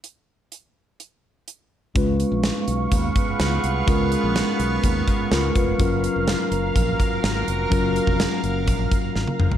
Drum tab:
HH |x---x---x---x---|x-x-x-x-x-x-x-x-|x-x-x-x-x-x-x-x-|x-x-x-x-x-x-x-x-|
SD |----------------|----o-------o---|----o-------o---|----o-------o---|
T1 |----------------|----------------|----------------|----------------|
T2 |----------------|----------------|----------------|----------------|
FT |----------------|----------------|----------------|----------------|
BD |----------------|o-------o-o-----|o-------o-o---o-|o-------o-o-----|

HH |x-x-x-x-x-x-----|
SD |----o-------o---|
T1 |-------------o--|
T2 |--------------o-|
FT |---------------o|
BD |o--o----o-o-----|